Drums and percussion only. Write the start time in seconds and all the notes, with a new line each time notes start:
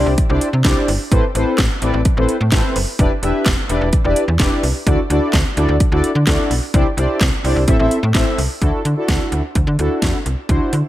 0.18 kick, closed hi-hat
0.41 closed hi-hat
0.65 kick, snare, clap, closed hi-hat
0.88 open hi-hat
1.12 kick, closed hi-hat
1.35 closed hi-hat
1.58 kick, snare, clap, closed hi-hat
1.82 closed hi-hat
2.05 kick, closed hi-hat
2.29 closed hi-hat
2.52 kick, snare, clap, closed hi-hat
2.76 open hi-hat
2.99 kick, closed hi-hat
3.23 closed hi-hat
3.46 kick, snare, clap, closed hi-hat
3.69 closed hi-hat
3.93 kick, closed hi-hat
4.16 closed hi-hat
4.40 kick, snare, clap, closed hi-hat
4.63 open hi-hat
4.87 kick, closed hi-hat
5.10 closed hi-hat
5.33 kick, snare, clap, closed hi-hat
5.57 closed hi-hat
5.80 kick, closed hi-hat
6.04 closed hi-hat
6.27 kick, snare, clap, closed hi-hat
6.51 open hi-hat
6.74 kick, closed hi-hat
6.98 closed hi-hat
7.21 kick, snare, clap, closed hi-hat
7.45 open hi-hat
7.68 kick, closed hi-hat
7.91 closed hi-hat
8.15 kick, snare, clap, closed hi-hat
8.38 open hi-hat
8.62 kick, closed hi-hat
8.85 closed hi-hat
9.08 kick, snare, closed hi-hat
9.32 closed hi-hat
9.55 kick, closed hi-hat
9.79 closed hi-hat
10.02 kick, snare, closed hi-hat
10.26 closed hi-hat
10.49 kick, closed hi-hat
10.73 closed hi-hat